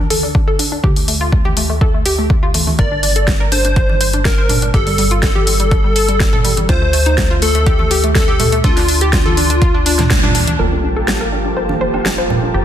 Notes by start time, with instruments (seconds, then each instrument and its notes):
Already playing: analog synth bass D2
0.10 synth pluck A4, open hi-hat
0.23 synth pluck D4
0.35 synth pluck D4, kick
0.48 synth pluck A4
0.59 synth pluck D4, open hi-hat
0.72 synth pluck D4
0.84 analog synth bass D2, synth pluck G4, kick
0.96 synth pluck A3, open hi-hat
1.08 synth pluck A3, open hi-hat
1.21 synth pluck F4
1.32 synth pluck A3, kick
1.45 synth pluck G4, high conga
1.57 synth pluck A3, open hi-hat
1.70 synth pluck A3
1.81 synth pluck A4, kick
1.94 synth pluck A3
2.06 synth pluck G4, open hi-hat
2.18 synth pluck A3
2.30 synth pluck A3, kick
2.43 synth pluck F4
2.54 synth pluck A3, open hi-hat, high conga
2.67 synth pluck A3, high conga
2.79 analog synth bass G1, synth pluck A#4, digital synth lead D5, kick, closed hi-hat
2.92 synth pluck D4
3.03 synth pluck D4, open hi-hat
3.16 synth pluck A4, closed hi-hat
3.28 synth pluck D4, kick, snare, closed hi-hat
3.40 synth pluck A#4
3.52 synth pluck D4, digital synth lead C5, open hi-hat
3.65 synth pluck D4, closed hi-hat
3.76 synth pluck C5, kick, closed hi-hat
3.89 synth pluck D4, high conga
4.01 synth pluck C5, open hi-hat
4.13 synth pluck D4, closed hi-hat
4.25 synth pluck D4, digital synth lead A#4, kick, snare, closed hi-hat
4.38 synth pluck C5
4.49 synth pluck D4, open hi-hat, low conga
4.62 synth pluck D4, closed hi-hat
4.74 analog synth bass G1, synth pluck G4, digital synth lead A4, kick, closed hi-hat
4.87 synth pluck G3, open hi-hat
4.98 synth pluck G3, open hi-hat
5.11 synth pluck F4, closed hi-hat
5.23 synth pluck G3, digital synth lead A4, kick, snare, closed hi-hat
5.35 synth pluck G4, high conga
5.47 synth pluck G3, open hi-hat
5.60 synth pluck G3, closed hi-hat
5.71 synth pluck A4, kick, closed hi-hat
5.84 synth pluck G3
5.96 synth pluck A4, open hi-hat
6.09 synth pluck G3, closed hi-hat
6.20 synth pluck G3, kick, snare, closed hi-hat
6.33 synth pluck A4, low conga
6.45 synth pluck G3, open hi-hat, high conga
6.57 synth pluck G3, closed hi-hat, high conga
6.69 analog synth bass D2, synth pluck F4, digital synth lead C5, kick, closed hi-hat
6.82 synth pluck A3
6.93 synth pluck A3, open hi-hat
7.06 synth pluck D#4, closed hi-hat
7.18 synth pluck A3, kick, snare, closed hi-hat
7.31 synth pluck F4
7.42 synth pluck A3, digital synth lead A4, open hi-hat
7.55 synth pluck A3, closed hi-hat
7.66 synth pluck G4, kick, closed hi-hat
7.79 synth pluck A3, high conga
7.91 synth pluck G4, open hi-hat
8.04 synth pluck A3, closed hi-hat
8.15 synth pluck A3, digital synth lead A4, kick, snare, closed hi-hat
8.28 synth pluck G4
8.39 synth pluck A3, open hi-hat, low conga
8.52 synth pluck A3, closed hi-hat
8.64 analog synth bass D2, digital synth lead F4, synth pluck A4, kick, closed hi-hat
8.77 synth pluck D4, snare, open hi-hat
8.88 synth pluck D4, open hi-hat
9.01 synth pluck G4, closed hi-hat
9.13 synth pluck D4, digital synth lead F4, kick, snare, closed hi-hat
9.26 synth pluck A4, high conga
9.37 synth pluck D4, open hi-hat
9.50 synth pluck D4, closed hi-hat
9.62 synth pluck F4, kick, closed hi-hat
9.75 synth pluck D4
9.86 synth pluck D4, open hi-hat
9.99 synth pluck D4, snare, closed hi-hat, high conga, low conga
10.10 synth pluck D4, kick, snare, closed hi-hat
10.23 synth pluck D4, low conga
10.35 synth pluck D4, open hi-hat, high conga
10.47 synth pluck D4, closed hi-hat, high conga
10.59 analog synth bass G1, analog synth pad F3 A#3 G4 A5, analog polysynth A#3 F4 G4 A4, synth pluck A#4, sub drop, high woodblock
10.72 synth pluck D4
10.84 synth pluck D4
10.96 synth pluck A4
11.08 synth pluck D4, snare, high woodblock
11.21 synth pluck A#4
11.32 synth pluck D4
11.45 synth pluck D4, high woodblock
11.57 synth pluck C5
11.69 synth pluck D4, high conga
11.81 synth pluck C5
11.94 synth pluck D4, high woodblock
12.06 synth pluck D4, snare
12.18 synth pluck C5
12.29 synth pluck D4, low conga, high woodblock
12.43 synth pluck D4
12.54 analog synth bass G1, synth pluck G4